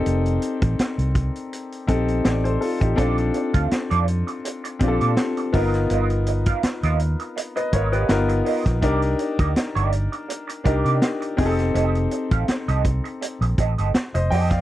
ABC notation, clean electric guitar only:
X:1
M:4/4
L:1/16
Q:"Swing 16ths" 1/4=82
K:Fmix
V:1 name="Clean electric guitar"
z16 | [CFAd] z2 [CFAf] z [CFAd] z4 [CFAd] [CFAd] z2 [=B,F^A^d] z | [=B,F^A^d] z2 [B,FAf] z [B,FAd] z4 [B,FAd] [B,FAd] z2 [B,FAd] z | [B,EGd] z2 [B,EGe] z [B,EGd] z4 [B,EGd] [B,EGd] z2 [CGAe] z |
[CGAe] z2 [CGAf] z [CGAe] z4 [CGAe] [CGAe] z2 [CGAe] z |]